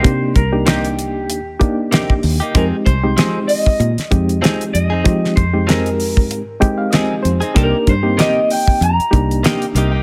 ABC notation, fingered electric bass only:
X:1
M:4/4
L:1/16
Q:"Swing 16ths" 1/4=96
K:Cm
V:1 name="Fingered electric bass" clef=bass
C,2 C,,6 E,,2 z4 E,, z | F,, z C,,2 z4 B,, z F,,2 z2 F,,2 | F,2 F,,6 A,,2 z4 F,, z | C,, z G,,2 z4 F,, z C,,2 z2 C,,2 |]